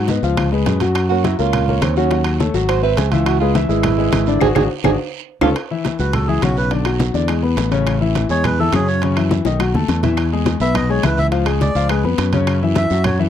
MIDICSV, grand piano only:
0, 0, Header, 1, 2, 480
1, 0, Start_track
1, 0, Key_signature, 3, "minor"
1, 0, Tempo, 288046
1, 1595, Time_signature, 4, 2, 24, 8
1, 22146, End_track
2, 0, Start_track
2, 0, Title_t, "Grand piano"
2, 0, Program_c, 0, 0
2, 141, Note_on_c, 0, 59, 70
2, 150, Note_on_c, 0, 71, 64
2, 152, Note_on_c, 0, 75, 65
2, 342, Note_off_c, 0, 59, 0
2, 348, Note_off_c, 0, 71, 0
2, 349, Note_off_c, 0, 75, 0
2, 386, Note_on_c, 0, 53, 81
2, 394, Note_on_c, 0, 65, 80
2, 395, Note_on_c, 0, 77, 77
2, 783, Note_off_c, 0, 53, 0
2, 788, Note_off_c, 0, 65, 0
2, 788, Note_off_c, 0, 77, 0
2, 863, Note_on_c, 0, 56, 73
2, 865, Note_on_c, 0, 68, 75
2, 872, Note_on_c, 0, 71, 73
2, 1261, Note_off_c, 0, 56, 0
2, 1262, Note_off_c, 0, 68, 0
2, 1267, Note_off_c, 0, 71, 0
2, 1353, Note_on_c, 0, 54, 78
2, 1356, Note_on_c, 0, 66, 73
2, 1369, Note_on_c, 0, 78, 82
2, 1748, Note_off_c, 0, 54, 0
2, 1750, Note_off_c, 0, 66, 0
2, 1757, Note_off_c, 0, 78, 0
2, 1837, Note_on_c, 0, 58, 73
2, 1845, Note_on_c, 0, 70, 68
2, 1851, Note_on_c, 0, 73, 68
2, 2033, Note_off_c, 0, 58, 0
2, 2038, Note_off_c, 0, 70, 0
2, 2041, Note_off_c, 0, 73, 0
2, 2072, Note_on_c, 0, 54, 76
2, 2077, Note_on_c, 0, 66, 82
2, 2082, Note_on_c, 0, 78, 77
2, 2270, Note_off_c, 0, 54, 0
2, 2273, Note_off_c, 0, 66, 0
2, 2276, Note_off_c, 0, 78, 0
2, 2318, Note_on_c, 0, 58, 69
2, 2323, Note_on_c, 0, 70, 72
2, 2334, Note_on_c, 0, 73, 67
2, 2711, Note_off_c, 0, 58, 0
2, 2714, Note_off_c, 0, 70, 0
2, 2721, Note_off_c, 0, 73, 0
2, 2810, Note_on_c, 0, 58, 69
2, 2815, Note_on_c, 0, 70, 82
2, 2819, Note_on_c, 0, 73, 78
2, 3198, Note_off_c, 0, 58, 0
2, 3201, Note_off_c, 0, 70, 0
2, 3203, Note_off_c, 0, 73, 0
2, 3284, Note_on_c, 0, 54, 84
2, 3287, Note_on_c, 0, 66, 89
2, 3291, Note_on_c, 0, 78, 88
2, 3478, Note_off_c, 0, 54, 0
2, 3480, Note_off_c, 0, 66, 0
2, 3482, Note_off_c, 0, 78, 0
2, 3520, Note_on_c, 0, 54, 84
2, 3533, Note_on_c, 0, 66, 81
2, 3536, Note_on_c, 0, 78, 86
2, 3913, Note_off_c, 0, 54, 0
2, 3920, Note_off_c, 0, 66, 0
2, 3922, Note_off_c, 0, 78, 0
2, 3999, Note_on_c, 0, 57, 68
2, 4005, Note_on_c, 0, 69, 71
2, 4011, Note_on_c, 0, 73, 65
2, 4195, Note_off_c, 0, 57, 0
2, 4198, Note_off_c, 0, 69, 0
2, 4202, Note_off_c, 0, 73, 0
2, 4236, Note_on_c, 0, 54, 89
2, 4240, Note_on_c, 0, 66, 87
2, 4242, Note_on_c, 0, 78, 76
2, 4630, Note_off_c, 0, 54, 0
2, 4633, Note_off_c, 0, 66, 0
2, 4634, Note_off_c, 0, 78, 0
2, 4708, Note_on_c, 0, 60, 74
2, 4711, Note_on_c, 0, 72, 76
2, 4719, Note_on_c, 0, 76, 81
2, 5106, Note_off_c, 0, 60, 0
2, 5108, Note_off_c, 0, 72, 0
2, 5112, Note_off_c, 0, 76, 0
2, 5203, Note_on_c, 0, 52, 83
2, 5206, Note_on_c, 0, 64, 86
2, 5216, Note_on_c, 0, 76, 83
2, 5594, Note_off_c, 0, 52, 0
2, 5596, Note_off_c, 0, 64, 0
2, 5602, Note_off_c, 0, 76, 0
2, 5687, Note_on_c, 0, 56, 76
2, 5689, Note_on_c, 0, 68, 76
2, 5695, Note_on_c, 0, 71, 80
2, 5880, Note_off_c, 0, 56, 0
2, 5882, Note_off_c, 0, 68, 0
2, 5885, Note_off_c, 0, 71, 0
2, 5922, Note_on_c, 0, 64, 81
2, 5923, Note_on_c, 0, 52, 71
2, 5932, Note_on_c, 0, 76, 85
2, 6117, Note_off_c, 0, 64, 0
2, 6118, Note_off_c, 0, 52, 0
2, 6123, Note_off_c, 0, 76, 0
2, 6147, Note_on_c, 0, 56, 79
2, 6154, Note_on_c, 0, 68, 69
2, 6163, Note_on_c, 0, 71, 69
2, 6545, Note_off_c, 0, 56, 0
2, 6549, Note_off_c, 0, 68, 0
2, 6554, Note_off_c, 0, 71, 0
2, 6630, Note_on_c, 0, 56, 83
2, 6633, Note_on_c, 0, 68, 72
2, 6642, Note_on_c, 0, 71, 77
2, 7027, Note_off_c, 0, 56, 0
2, 7029, Note_off_c, 0, 68, 0
2, 7034, Note_off_c, 0, 71, 0
2, 7119, Note_on_c, 0, 50, 85
2, 7124, Note_on_c, 0, 62, 84
2, 7136, Note_on_c, 0, 74, 89
2, 7315, Note_off_c, 0, 50, 0
2, 7318, Note_off_c, 0, 62, 0
2, 7325, Note_off_c, 0, 74, 0
2, 7351, Note_on_c, 0, 66, 107
2, 7353, Note_on_c, 0, 62, 97
2, 7354, Note_on_c, 0, 68, 101
2, 7507, Note_off_c, 0, 66, 0
2, 7509, Note_off_c, 0, 62, 0
2, 7509, Note_off_c, 0, 68, 0
2, 7593, Note_on_c, 0, 62, 94
2, 7598, Note_on_c, 0, 68, 90
2, 7601, Note_on_c, 0, 66, 95
2, 7749, Note_off_c, 0, 62, 0
2, 7752, Note_off_c, 0, 68, 0
2, 7753, Note_off_c, 0, 66, 0
2, 8070, Note_on_c, 0, 68, 91
2, 8071, Note_on_c, 0, 62, 96
2, 8078, Note_on_c, 0, 66, 86
2, 8226, Note_off_c, 0, 68, 0
2, 8227, Note_off_c, 0, 62, 0
2, 8231, Note_off_c, 0, 66, 0
2, 9019, Note_on_c, 0, 61, 88
2, 9021, Note_on_c, 0, 65, 100
2, 9025, Note_on_c, 0, 69, 98
2, 9180, Note_off_c, 0, 61, 0
2, 9181, Note_off_c, 0, 65, 0
2, 9184, Note_off_c, 0, 69, 0
2, 9514, Note_on_c, 0, 64, 70
2, 9516, Note_on_c, 0, 52, 67
2, 9519, Note_on_c, 0, 76, 71
2, 9909, Note_off_c, 0, 64, 0
2, 9910, Note_off_c, 0, 52, 0
2, 9912, Note_off_c, 0, 76, 0
2, 9995, Note_on_c, 0, 54, 69
2, 9999, Note_on_c, 0, 66, 75
2, 10004, Note_on_c, 0, 78, 67
2, 10389, Note_off_c, 0, 54, 0
2, 10392, Note_off_c, 0, 66, 0
2, 10394, Note_off_c, 0, 78, 0
2, 10466, Note_on_c, 0, 52, 77
2, 10475, Note_on_c, 0, 64, 75
2, 10483, Note_on_c, 0, 76, 70
2, 10667, Note_off_c, 0, 52, 0
2, 10672, Note_off_c, 0, 64, 0
2, 10677, Note_off_c, 0, 76, 0
2, 10703, Note_on_c, 0, 49, 79
2, 10705, Note_on_c, 0, 61, 76
2, 10712, Note_on_c, 0, 73, 69
2, 11102, Note_off_c, 0, 49, 0
2, 11103, Note_off_c, 0, 61, 0
2, 11107, Note_off_c, 0, 73, 0
2, 11180, Note_on_c, 0, 50, 74
2, 11180, Note_on_c, 0, 62, 84
2, 11189, Note_on_c, 0, 74, 89
2, 11383, Note_off_c, 0, 62, 0
2, 11384, Note_off_c, 0, 50, 0
2, 11388, Note_off_c, 0, 74, 0
2, 11426, Note_on_c, 0, 54, 73
2, 11435, Note_on_c, 0, 66, 74
2, 11439, Note_on_c, 0, 78, 68
2, 11824, Note_off_c, 0, 54, 0
2, 11829, Note_off_c, 0, 66, 0
2, 11831, Note_off_c, 0, 78, 0
2, 11893, Note_on_c, 0, 50, 79
2, 11904, Note_on_c, 0, 62, 83
2, 11912, Note_on_c, 0, 74, 85
2, 12099, Note_off_c, 0, 50, 0
2, 12105, Note_off_c, 0, 62, 0
2, 12110, Note_off_c, 0, 74, 0
2, 12143, Note_on_c, 0, 56, 73
2, 12147, Note_on_c, 0, 68, 65
2, 12148, Note_on_c, 0, 80, 69
2, 12345, Note_off_c, 0, 56, 0
2, 12347, Note_off_c, 0, 68, 0
2, 12348, Note_off_c, 0, 80, 0
2, 12379, Note_on_c, 0, 71, 75
2, 12381, Note_on_c, 0, 59, 80
2, 12384, Note_on_c, 0, 83, 73
2, 12779, Note_off_c, 0, 71, 0
2, 12780, Note_off_c, 0, 59, 0
2, 12782, Note_off_c, 0, 83, 0
2, 12852, Note_on_c, 0, 49, 92
2, 12855, Note_on_c, 0, 61, 82
2, 12860, Note_on_c, 0, 73, 83
2, 13255, Note_off_c, 0, 49, 0
2, 13257, Note_off_c, 0, 61, 0
2, 13260, Note_off_c, 0, 73, 0
2, 13339, Note_on_c, 0, 52, 77
2, 13347, Note_on_c, 0, 64, 70
2, 13354, Note_on_c, 0, 76, 69
2, 13739, Note_off_c, 0, 52, 0
2, 13743, Note_off_c, 0, 64, 0
2, 13747, Note_off_c, 0, 76, 0
2, 13830, Note_on_c, 0, 56, 70
2, 13834, Note_on_c, 0, 68, 70
2, 13837, Note_on_c, 0, 80, 66
2, 14225, Note_off_c, 0, 56, 0
2, 14227, Note_off_c, 0, 68, 0
2, 14229, Note_off_c, 0, 80, 0
2, 14329, Note_on_c, 0, 64, 83
2, 14330, Note_on_c, 0, 52, 79
2, 14339, Note_on_c, 0, 76, 84
2, 14519, Note_off_c, 0, 64, 0
2, 14520, Note_off_c, 0, 52, 0
2, 14525, Note_off_c, 0, 76, 0
2, 14555, Note_on_c, 0, 49, 72
2, 14561, Note_on_c, 0, 61, 79
2, 14567, Note_on_c, 0, 73, 76
2, 14947, Note_off_c, 0, 49, 0
2, 14951, Note_off_c, 0, 61, 0
2, 14954, Note_off_c, 0, 73, 0
2, 15040, Note_on_c, 0, 61, 88
2, 15045, Note_on_c, 0, 49, 80
2, 15052, Note_on_c, 0, 73, 82
2, 15234, Note_off_c, 0, 61, 0
2, 15236, Note_off_c, 0, 49, 0
2, 15241, Note_off_c, 0, 73, 0
2, 15279, Note_on_c, 0, 64, 71
2, 15286, Note_on_c, 0, 52, 72
2, 15287, Note_on_c, 0, 76, 69
2, 15669, Note_off_c, 0, 64, 0
2, 15673, Note_off_c, 0, 52, 0
2, 15674, Note_off_c, 0, 76, 0
2, 15766, Note_on_c, 0, 51, 80
2, 15766, Note_on_c, 0, 63, 81
2, 15770, Note_on_c, 0, 75, 82
2, 15957, Note_off_c, 0, 51, 0
2, 15957, Note_off_c, 0, 63, 0
2, 15959, Note_off_c, 0, 75, 0
2, 15989, Note_on_c, 0, 54, 68
2, 16005, Note_on_c, 0, 66, 67
2, 16006, Note_on_c, 0, 78, 66
2, 16186, Note_off_c, 0, 54, 0
2, 16196, Note_off_c, 0, 66, 0
2, 16197, Note_off_c, 0, 78, 0
2, 16231, Note_on_c, 0, 57, 68
2, 16239, Note_on_c, 0, 69, 70
2, 16247, Note_on_c, 0, 81, 77
2, 16624, Note_off_c, 0, 57, 0
2, 16629, Note_off_c, 0, 69, 0
2, 16633, Note_off_c, 0, 81, 0
2, 16713, Note_on_c, 0, 52, 80
2, 16716, Note_on_c, 0, 64, 75
2, 16724, Note_on_c, 0, 76, 80
2, 17105, Note_off_c, 0, 52, 0
2, 17107, Note_off_c, 0, 64, 0
2, 17112, Note_off_c, 0, 76, 0
2, 17208, Note_on_c, 0, 56, 79
2, 17208, Note_on_c, 0, 68, 71
2, 17215, Note_on_c, 0, 80, 76
2, 17594, Note_off_c, 0, 56, 0
2, 17594, Note_off_c, 0, 68, 0
2, 17597, Note_off_c, 0, 80, 0
2, 17682, Note_on_c, 0, 59, 80
2, 17684, Note_on_c, 0, 71, 73
2, 17687, Note_on_c, 0, 83, 74
2, 18070, Note_off_c, 0, 59, 0
2, 18071, Note_off_c, 0, 71, 0
2, 18072, Note_off_c, 0, 83, 0
2, 18151, Note_on_c, 0, 56, 84
2, 18158, Note_on_c, 0, 68, 71
2, 18161, Note_on_c, 0, 80, 76
2, 18347, Note_off_c, 0, 56, 0
2, 18351, Note_off_c, 0, 68, 0
2, 18352, Note_off_c, 0, 80, 0
2, 18379, Note_on_c, 0, 52, 71
2, 18385, Note_on_c, 0, 64, 78
2, 18389, Note_on_c, 0, 76, 72
2, 18776, Note_off_c, 0, 52, 0
2, 18779, Note_off_c, 0, 64, 0
2, 18782, Note_off_c, 0, 76, 0
2, 18853, Note_on_c, 0, 65, 81
2, 18855, Note_on_c, 0, 53, 91
2, 18863, Note_on_c, 0, 77, 85
2, 19055, Note_off_c, 0, 65, 0
2, 19057, Note_off_c, 0, 53, 0
2, 19062, Note_off_c, 0, 77, 0
2, 19091, Note_on_c, 0, 56, 71
2, 19097, Note_on_c, 0, 68, 75
2, 19103, Note_on_c, 0, 80, 82
2, 19491, Note_off_c, 0, 56, 0
2, 19495, Note_off_c, 0, 68, 0
2, 19498, Note_off_c, 0, 80, 0
2, 19588, Note_on_c, 0, 53, 79
2, 19589, Note_on_c, 0, 65, 86
2, 19599, Note_on_c, 0, 77, 88
2, 19785, Note_off_c, 0, 53, 0
2, 19785, Note_off_c, 0, 65, 0
2, 19791, Note_off_c, 0, 77, 0
2, 19830, Note_on_c, 0, 56, 68
2, 19837, Note_on_c, 0, 68, 69
2, 19848, Note_on_c, 0, 80, 70
2, 20025, Note_off_c, 0, 56, 0
2, 20029, Note_off_c, 0, 68, 0
2, 20036, Note_off_c, 0, 80, 0
2, 20068, Note_on_c, 0, 59, 74
2, 20074, Note_on_c, 0, 71, 76
2, 20074, Note_on_c, 0, 83, 69
2, 20461, Note_off_c, 0, 59, 0
2, 20464, Note_off_c, 0, 71, 0
2, 20465, Note_off_c, 0, 83, 0
2, 20549, Note_on_c, 0, 49, 96
2, 20558, Note_on_c, 0, 61, 85
2, 20560, Note_on_c, 0, 73, 90
2, 20942, Note_off_c, 0, 49, 0
2, 20947, Note_off_c, 0, 61, 0
2, 20948, Note_off_c, 0, 73, 0
2, 21036, Note_on_c, 0, 52, 79
2, 21042, Note_on_c, 0, 64, 78
2, 21052, Note_on_c, 0, 76, 77
2, 21426, Note_off_c, 0, 52, 0
2, 21429, Note_off_c, 0, 64, 0
2, 21435, Note_off_c, 0, 76, 0
2, 21517, Note_on_c, 0, 54, 74
2, 21521, Note_on_c, 0, 66, 80
2, 21530, Note_on_c, 0, 78, 76
2, 21906, Note_off_c, 0, 54, 0
2, 21909, Note_off_c, 0, 66, 0
2, 21914, Note_off_c, 0, 78, 0
2, 21981, Note_on_c, 0, 52, 82
2, 21982, Note_on_c, 0, 64, 78
2, 21995, Note_on_c, 0, 76, 81
2, 22146, Note_off_c, 0, 52, 0
2, 22146, Note_off_c, 0, 64, 0
2, 22146, Note_off_c, 0, 76, 0
2, 22146, End_track
0, 0, End_of_file